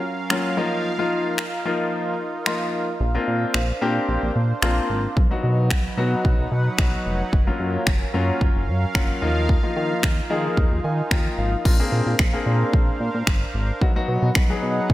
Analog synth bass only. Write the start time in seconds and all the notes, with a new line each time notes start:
3.01 A#1
3.28 A#2
3.55 A#1
3.82 A#2
4.09 A#1
4.23 A#1
4.36 A#2
4.63 A#1
4.90 G#1
5.17 B1
5.44 B2
5.71 B1
5.98 B2
6.25 B1
6.39 B1
6.52 B2
6.79 B1
7.06 F1
7.33 F#1
7.60 F#2
7.87 F#1
8.14 F#2
8.41 F#1
8.56 F#1
8.68 F#2
8.95 F#1
9.22 D#2
9.76 D#3
10.03 D#2
10.30 D#3
10.57 D#2
10.72 D#2
10.84 D#3
11.11 D#2
11.38 G#1
11.65 A#1
11.92 A#2
12.07 A#2
12.20 A#1
12.46 A#2
12.73 A#1
13.00 A#2
13.15 A#2
13.27 G1
13.54 G#1
13.81 B1
14.08 B2
14.22 B2
14.36 B1
14.62 B2
14.90 B1